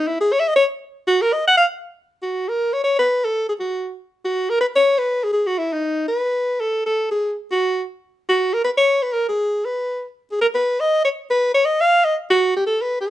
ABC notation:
X:1
M:4/4
L:1/16
Q:"Swing" 1/4=238
K:B
V:1 name="Alto saxophone"
E2 G2 (3c2 e2 d2 c2 z6 | F2 A2 d2 f2 ^e2 z6 | z2 F4 A4 c2 c2 B2- | B2 =A4 G2 F6 z2 |
z2 F4 A2 B2 c4 B2- | B2 G2 G2 F2 E2 D6 | B8 =A4 A4 | G4 z2 F6 z4 |
z2 F4 A2 B2 c4 B2 | A2 G6 B6 z2 | z2 G2 A2 B4 d4 c2 | z2 B4 c2 d2 ^e4 d2 |
z2 F4 =G2 =A2 B3 G ^G2 |]